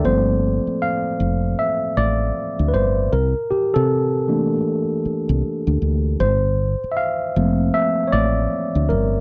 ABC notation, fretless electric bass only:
X:1
M:4/4
L:1/16
Q:"Swing 16ths" 1/4=78
K:Gdor
V:1 name="Fretless electric bass" clef=bass
G,,,3 z3 F,,,2 z2 A,,,2 z D,, G,,,2 | C,, z2 C,4- C, z3 C,, z D,, D,,2 | G,,,3 z3 F,,,2 z2 A,,,2 z D,, G,,,2 |]